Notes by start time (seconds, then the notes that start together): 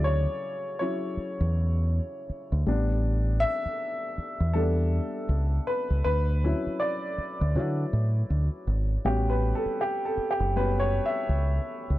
Already playing: D2 C#3 F#3 E4 D5
0.04 C#5
0.79 F#3 C#4 E4 C#5
1.17 muted fingered electric bass stroke
1.41 E2
2.29 muted fingered electric bass stroke
2.52 D2
2.66 A1 G3 B3 D4
3.40 E5
3.65 muted fingered electric bass stroke
4.18 muted fingered electric bass stroke
4.40 E2
4.53 G3 B3 D4 A4
5.29 C#2
5.67 B4
5.90 C#2
6.04 D2 B4
6.44 F#3 C#4 E4
6.67 muted fingered electric bass stroke
6.80 D5
7.18 muted fingered electric bass stroke
7.41 D2
7.55 D3 F#3 E4 C#5
7.93 A2
8.30 D2
8.67 G#1
9.05 A1 G3 B3 C#4 F#4 G4
9.30 B4
9.55 A4
9.66 muted fingered electric bass stroke
9.81 G4
10.05 A4
10.17 muted fingered electric bass stroke
10.31 G4
10.40 F#1
10.56 G3 B3 C#4 F#4 B4
10.80 C#5
11.06 E5
11.29 C#2
11.90 C#2